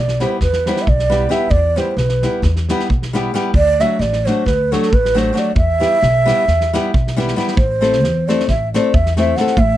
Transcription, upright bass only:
Already playing: B1
0.42 E2
0.88 B1
1.50 E2
1.97 B1
2.42 E2
2.89 B1
3.54 D2
3.99 A1
4.46 D2
4.92 A1
5.55 E2
6.02 B1
6.48 E2
6.94 B1
7.56 A1
8.03 E2
8.48 A1
8.94 E2
9.58 A1

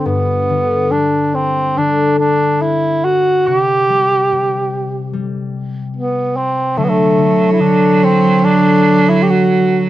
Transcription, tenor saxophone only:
0.06 B3
0.91 D4
1.35 C4
1.77 D4
2.19 D4
2.61 E4
3.04 F#4
3.47 G4
5.96 B3
6.36 C4
6.78 A3
6.84 B3
6.89 A3
7.52 E4
7.61 D4
8.04 C4
8.44 D4
9.09 E4
9.23 G4
9.30 F#4

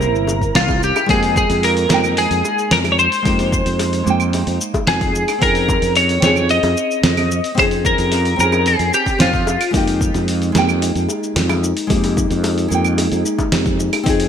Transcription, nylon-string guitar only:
Already playing: A#3 C4 E4 G4
1.06 G#3 A#3
1.11 D#4 G4
1.88 G#3 A#3
1.92 D#4 G5
3.22 G#3 A#3
3.27 D#4 G4
4.04 G#3 A#3
4.08 D#4 G5
5.39 C4 C#4
5.43 D#4 G#4
6.20 C4 C#4
6.24 D#4 G#4
7.55 C4 C#4
7.59 D#4 G#4
8.36 C4 C#4
8.40 D#4 G#4
9.19 C4 C#4 D#4 G4
9.71 G#3 A#3
9.75 D#4 G4
10.52 G#3 A#3
10.56 D#4 G5
11.87 G#3 A#3
11.91 D#4 G4
12.68 G#3 A#3 D#4
12.74 G5
14.03 C4 C#4
14.08 D#4 G#4

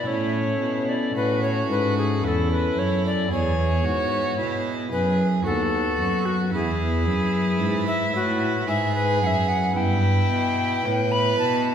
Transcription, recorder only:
0.07 C#5
0.89 D5
1.16 B4
1.43 C#5
1.71 B4
1.97 G#4
2.24 A4 B4
2.51 B4
2.79 C#5
3.06 D5
3.32 C#5
4.92 B4
5.46 A4
6.26 F#4
6.54 G#4
7.87 E5
8.16 F#4
8.68 E5
8.95 B4
9.22 F#5
9.27 E5
9.48 F#5
9.77 G5
11.12 B5
11.39 A5

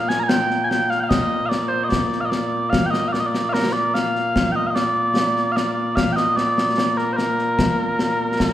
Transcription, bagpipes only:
Already playing: A#2 A#3
0.09 G#5
0.20 G#5 A#5
0.29 G5
0.64 G#5
0.69 G5
0.90 F5
1.00 F5 G5
1.09 D#5
1.46 D5 F5
1.68 C5
1.84 D#5
1.89 D5
2.21 F5
2.25 D#5
2.30 D5
2.70 F5
2.86 G5
2.90 D#5
3.08 F5
3.12 D5
3.20 D#5
3.26 D5
3.49 A#4 F5
3.72 D5
3.94 F5
4.52 D#5 G5
4.67 D#5 F5
4.75 D5
5.52 F5
5.56 D5
5.96 F5
6.12 D#5 G5
6.36 D5
6.97 A#4
7.13 A#4 C5

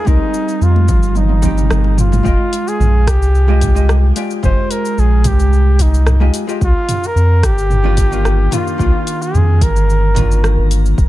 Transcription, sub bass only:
0.07 C2
0.61 F2
0.89 G1
1.70 G1
2.25 F1
2.80 A#1
3.07 C2
4.43 F1
4.98 A#1
5.25 C2
6.62 C2
7.15 F2
7.43 G1
8.80 C2
9.34 F2
9.61 G1
10.58 G1
10.98 F1

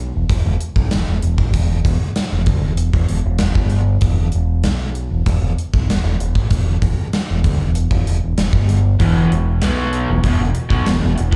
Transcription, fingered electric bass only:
Already playing: B1
0.15 E1
0.29 E1
0.45 E1
0.61 muted fingered electric bass stroke
0.76 B1
0.93 E1
1.08 E1
1.23 E1
1.39 A1
1.54 E1
1.85 E1
2.01 muted fingered electric bass stroke
2.32 E1
2.47 D2
2.62 E1
2.93 E1
3.09 E1
3.25 E1
3.42 E1
3.55 G1
4.02 E1
4.34 E1
4.64 B1
5.11 E1
5.26 E1
5.41 E1
5.57 muted fingered electric bass stroke
5.74 B1
5.87 E1
6.03 E1
6.20 E1
6.35 A1
6.51 E1
6.82 E1
7.30 E1
7.44 D2
7.62 E1
7.91 E1
8.08 E1
8.24 E1
8.38 E1
8.53 G1
9.00 E1
9.31 E1
9.62 B1
10.08 E1
10.24 E1
10.41 E1
10.70 B1
10.88 E1
11.04 E1
11.19 E1
11.32 A1

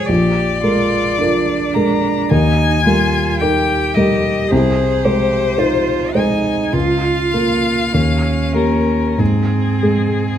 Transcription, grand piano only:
Already playing: G#3 F4 C5
0.09 A#1
0.64 G#3 A#4
1.21 F4 A#4
1.76 G#3 A#4
2.31 D#2
2.86 G3 A#4
3.42 D#4 A#4
3.97 G3 A#4
4.52 C2
5.05 G#3 C5
5.58 D#4 C5
6.15 G#3 C5
6.73 C#2
7.34 A#3 A#4
7.94 D#2
8.54 A#3 G4
9.18 G#2
9.83 G#3 G#4

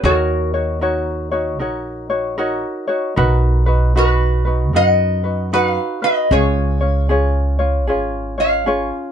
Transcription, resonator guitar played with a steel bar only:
0.05 F#4 A#4
3.97 F#4 B4
4.76 D#5 F#5
5.53 B4 F#5
5.67 F5
6.04 B4 D#5
6.32 G#4 C#5
8.40 C#5 F5

